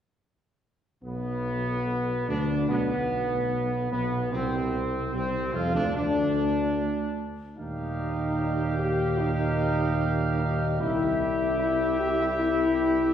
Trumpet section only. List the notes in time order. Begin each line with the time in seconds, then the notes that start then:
1.04 B3
2.29 D4
2.70 B3
3.92 B3
4.34 C4
5.14 C4
5.54 F4
5.75 D4
5.95 D4
7.58 G4 F5
10.80 G4 E5